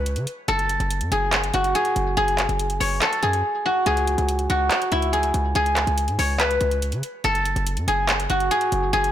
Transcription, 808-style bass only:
0.00 0.18 C#2 loud
0.17 0.27 C#3 loud
0.48 0.79 F#1 loud
0.80 1.03 F#1 loud
1.01 1.11 F#2 loud
1.12 1.52 F#1 loud
1.54 1.74 F#1 loud
1.96 2.16 F#1 loud
2.17 2.48 F#1 loud
2.49 2.79 F#1 loud
2.81 3.01 F#1 loud
3.23 3.43 F#2 loud
3.86 4.17 C#2 loud
4.18 4.48 C#2 loud
4.50 4.70 C#2 loud
4.92 5.32 C#2 loud
5.34 5.54 C#2 loud
5.55 5.86 C#2 loud
5.87 6.10 C#2 loud
6.08 6.18 G#2 loud
6.19 6.59 C#2 loud
6.61 6.94 C#2 loud
6.93 7.03 C#3 loud
7.24 7.55 F#1 loud
7.56 7.79 F#1 loud
7.77 7.87 F#2 loud
7.88 8.28 F#1 loud
8.30 8.50 F#1 loud
8.72 8.92 F#1 loud
8.93 9.12 F#1 loud

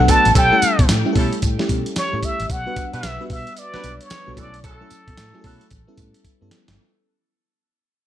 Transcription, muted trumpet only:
0.00 0.12 F#5 medium
0.10 0.36 A5 loud
0.38 0.86 G5 loud
1.98 2.26 C#5 loud
2.25 2.53 E5 loud
2.52 2.97 F#5 loud
2.95 3.31 E5 loud
3.32 3.60 E5 loud
3.59 4.04 D5 loud
4.02 4.41 C#5 loud
4.39 4.65 D5 medium
4.66 5.68 A4 medium

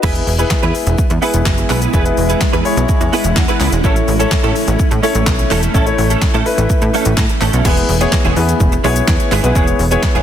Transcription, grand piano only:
0.03 0.31 E4 medium
0.03 0.31 G#4 medium
0.03 0.31 B4 medium
0.39 1.03 E4 medium
0.39 1.04 G#4 medium
0.39 1.04 B4 medium
1.22 1.77 E4 medium
1.22 1.78 G#4 medium
1.22 1.78 B4 medium
1.93 2.03 E4 medium
1.93 2.03 G#4 medium
1.93 2.03 B4 medium
2.05 2.52 E4 medium
2.05 2.52 G#4 medium
2.05 2.52 B4 loud
2.65 3.39 E4 medium
2.65 3.39 G#4 medium
2.65 3.39 C#5 loud
2.65 2.87 B5 medium
2.89 3.11 G#5 medium
3.13 3.35 E5 medium
3.37 3.81 F#5 medium
3.84 4.12 E4 medium
3.84 4.12 A4 medium
3.84 4.12 C#5 medium
4.20 4.84 E4 medium
4.20 4.85 A4 medium
4.20 4.85 C#5 loud
5.03 5.58 E4 medium
5.03 5.59 A4 medium
5.03 5.59 C#5 loud
5.74 5.84 E4 medium
5.74 5.84 A4 medium
5.74 5.84 C#5 medium
5.86 6.32 E4 medium
5.86 6.32 A4 medium
5.86 6.33 C#5 loud
6.46 7.20 E4 medium
6.46 7.20 A4 medium
6.46 7.20 B4 loud
7.65 7.93 B3 medium
7.65 7.93 E4 medium
7.65 7.93 G#4 medium
7.65 7.93 B4 medium
8.01 8.28 B3 medium
8.01 8.29 E4 medium
8.01 8.29 G#4 medium
8.01 8.29 C#5 loud
8.36 8.73 B3 medium
8.36 8.73 E4 medium
8.36 8.74 G#4 medium
8.36 8.74 B4 medium
8.84 9.30 B3 medium
8.84 9.30 E4 medium
8.84 9.30 G#4 medium
8.84 9.30 C#5 loud
9.43 9.53 B3 medium
9.43 9.53 E4 medium
9.43 9.53 G#4 medium
9.43 9.53 B4 loud
9.55 9.83 B3 medium
9.55 9.83 E4 medium
9.55 9.83 G#4 medium
9.55 9.83 C#5 loud
9.91 10.19 B3 medium
9.91 10.19 E4 medium
9.91 10.19 G#4 medium
9.91 10.19 C#5 loud

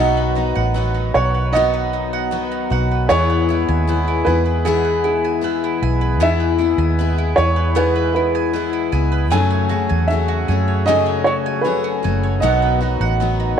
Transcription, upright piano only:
0.00 0.71 D#5 medium
1.14 1.55 C#5 medium
1.53 2.27 D#5 loud
3.09 4.22 C#5 loud
4.25 4.62 B4 medium
4.65 5.03 G#4 medium
5.04 5.78 G#4 medium
6.23 7.35 E5 loud
7.36 7.77 C#5 loud
7.76 8.13 B4 medium
8.14 8.89 B4 medium
9.32 10.12 G#5 loud
10.07 10.89 E5 medium
10.86 11.27 D#5 loud
11.24 11.33 C#5 medium
11.61 12.18 B4 medium
12.40 13.60 D#5 medium

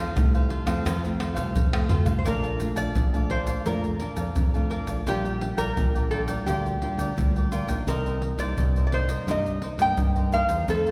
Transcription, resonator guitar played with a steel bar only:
2.19 2.26 C5 medium
2.28 2.76 A#4 medium
2.77 3.30 D5 medium
3.31 3.64 C5 medium
3.66 4.68 A#4 medium
5.08 5.62 G4 medium
5.58 6.08 A#4 loud
6.11 6.20 A4 medium
6.46 7.48 G4 medium
7.88 8.42 A#4 medium
8.40 8.86 D5 medium
8.87 8.93 D5 medium
8.94 9.26 C5 medium
9.31 9.78 D#5 medium
9.82 10.30 G5 medium
10.34 10.66 F5 medium
10.70 10.91 A4 medium

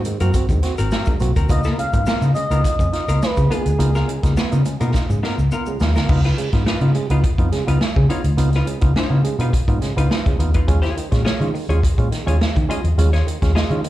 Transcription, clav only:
0.06 0.17 G#2 medium
0.06 0.17 D#3 medium
0.21 0.31 A#3 medium
0.21 0.31 C4 medium
0.21 0.31 F#4 medium
0.34 0.46 C4 medium
0.34 0.46 F#4 medium
0.50 0.60 G#2 medium
0.50 0.60 D#3 medium
0.63 0.74 C4 medium
0.63 0.75 F#4 medium
0.92 0.98 C4 soft
0.92 0.98 F#4 soft
1.07 1.17 G#2 medium
1.07 1.17 D#3 medium
1.20 1.32 A#3 medium
1.20 1.32 C4 medium
1.20 1.32 F#4 medium
1.49 1.61 A#3 medium
1.49 1.61 B3 medium
1.49 1.61 D#4 medium
1.49 1.61 F4 loud
1.78 1.90 C#3 medium
1.78 1.90 G#3 medium
1.93 2.03 A#3 medium
1.93 2.03 B3 medium
1.93 2.03 D#4 medium
1.93 2.03 F4 medium
2.21 2.32 A#3 medium
2.21 2.32 B3 medium
2.21 2.32 D#4 medium
2.21 2.32 F4 medium
2.35 2.47 C#3 medium
2.35 2.47 G#3 medium
2.50 2.61 A#3 medium
2.50 2.61 B3 medium
2.50 2.61 D#4 medium
2.50 2.61 F4 medium
2.63 2.75 D#4 medium
2.63 2.76 F4 medium
2.79 2.90 C#3 medium
2.79 2.90 G#3 medium
2.93 3.04 D#4 medium
2.93 3.04 F4 medium
3.22 3.28 D#4 soft
3.22 3.28 F4 soft
3.37 3.47 C#3 medium
3.37 3.47 G#3 medium
3.50 3.62 A#3 medium
3.50 3.62 B3 medium
3.50 3.62 D#4 medium
3.50 3.62 F4 medium
3.78 3.90 A#3 loud
3.78 3.90 B3 medium
3.78 3.91 D#4 medium
3.78 3.91 F4 loud
4.08 4.19 C#3 medium
4.08 4.19 G#3 medium
4.23 4.33 A#3 medium
4.23 4.33 B3 medium
4.23 4.33 D#4 medium
4.23 4.34 F4 medium
4.52 4.62 A#3 medium
4.52 4.62 B3 medium
4.52 4.62 D#4 medium
4.52 4.62 F4 medium
4.66 4.77 C#3 medium
4.66 4.77 G#3 medium
4.80 4.91 A#3 medium
4.80 4.91 B3 medium
4.80 4.91 D#4 medium
4.80 4.91 F4 medium
4.95 5.06 D#4 medium
4.95 5.06 F4 medium
5.09 5.20 C#3 medium
5.09 5.20 G#3 medium
5.23 5.35 D#4 medium
5.23 5.35 F4 medium
5.52 5.58 D#4 soft
5.52 5.58 F4 soft
5.67 5.77 C#3 medium
5.67 5.77 G#3 medium
5.80 5.92 A#3 medium
5.80 5.92 B3 medium
5.80 5.92 D#4 medium
5.80 5.92 F4 medium
6.09 6.21 B3 medium
6.09 6.21 D#4 medium
6.09 6.21 F4 loud
6.38 6.49 C#3 medium
6.38 6.49 G#3 medium
6.53 6.63 B3 medium
6.53 6.63 D#4 medium
6.53 6.63 F4 medium
6.81 6.92 B3 medium
6.81 6.92 D#4 medium
6.81 6.92 F4 medium
6.95 7.07 C#3 medium
6.95 7.07 G#3 medium
7.10 7.20 B3 medium
7.10 7.21 D#4 medium
7.10 7.21 F4 medium
7.38 7.49 B3 medium
7.38 7.49 D#4 medium
7.38 7.49 F4 medium
7.52 7.64 C#3 medium
7.52 7.64 G#3 medium
7.67 7.77 B3 medium
7.67 7.78 D#4 medium
7.67 7.78 F4 medium
7.81 7.87 D#4 soft
7.81 7.87 F4 soft
7.96 8.06 C#3 medium
7.96 8.06 G#3 medium
8.09 8.21 B3 medium
8.09 8.21 D#4 medium
8.09 8.21 F4 medium
8.37 8.50 B3 loud
8.37 8.50 D#4 medium
8.37 8.50 F4 loud
8.66 8.78 C#3 medium
8.66 8.78 G#3 medium
8.81 8.92 B3 medium
8.81 8.92 D#4 medium
8.81 8.92 F4 medium
9.10 9.21 B3 medium
9.10 9.21 D#4 medium
9.10 9.21 F4 medium
9.24 9.36 C#3 medium
9.24 9.36 G#3 medium
9.39 9.50 B3 medium
9.39 9.50 D#4 medium
9.39 9.50 F4 loud
9.68 9.79 B3 medium
9.68 9.79 D#4 medium
9.68 9.79 F4 medium
9.82 9.93 C#3 medium
9.82 9.93 G#3 medium
9.97 10.07 B3 medium
9.97 10.07 D#4 medium
9.97 10.08 F4 loud
10.10 10.17 D#4 soft
10.10 10.17 F4 soft
10.26 10.36 C#3 medium
10.26 10.36 G#3 medium
10.39 10.51 B3 medium
10.39 10.51 D#4 medium
10.39 10.51 F4 medium
10.68 10.79 G#3 loud
10.68 10.80 C#4 medium
10.68 10.80 F4 loud
10.96 11.08 D#3 medium
11.11 11.22 G#3 medium
11.11 11.22 C#4 medium
11.11 11.22 F4 medium
11.40 11.51 G#3 medium
11.40 11.51 C#4 medium
11.40 11.51 F4 medium
11.54 11.66 D#3 medium
11.69 11.80 G#3 medium
11.69 11.80 C#4 medium
11.69 11.80 F4 medium
11.98 12.08 G#3 medium
11.98 12.08 C#4 medium
11.98 12.08 F4 medium
12.11 12.23 D#3 medium
12.26 12.37 G#3 medium
12.26 12.37 C#4 medium
12.26 12.37 F4 medium
12.40 12.46 C#4 soft
12.40 12.46 F4 soft
12.56 12.66 D#3 medium
12.69 12.80 G#3 medium
12.69 12.81 C#4 medium
12.69 12.81 F4 medium
12.98 13.09 G#3 loud
12.98 13.10 C#4 medium
12.98 13.10 F4 loud
13.27 13.38 D#3 medium
13.42 13.52 G#3 medium
13.42 13.52 C#4 medium
13.42 13.52 F4 medium
13.70 13.81 G#3 medium
13.70 13.81 C#4 medium
13.70 13.81 F4 medium
13.84 13.89 D#3 medium

